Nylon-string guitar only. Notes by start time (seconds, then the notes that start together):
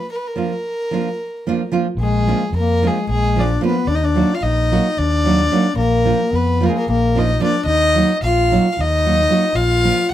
0.36 F3 A#3 D4 F4
0.91 F3 A#3 D4 F4
1.47 F3 A#3 D4 F4
1.72 F3 A#3 D4 F4
2.27 F3 A#3 D4 F4
2.82 F3 A#3 D4 F4
3.36 F3 A#3 D4 F4
3.61 F3 A#3 D4 F4
4.15 F#3 A#3 D#4 F#4
4.71 F#3 A#3 D#4 F#4
5.25 F#3 A#3 D#4 F#4
5.52 F#3 A#3 D#4 F#4
6.04 F3 A#3 D4 F4
6.61 F3 A#3 D4 F4
7.15 F3 A#3 D4 F4
7.40 F3 A#3 D4 F4
7.95 F#3 A#3 D#4 F#4
8.51 F#3 A#3 D#4 F#4
9.05 F#3 A#3 D#4 F#4
9.30 F#3 A#3 D#4 F#4
9.84 F3 A#3 D4 F4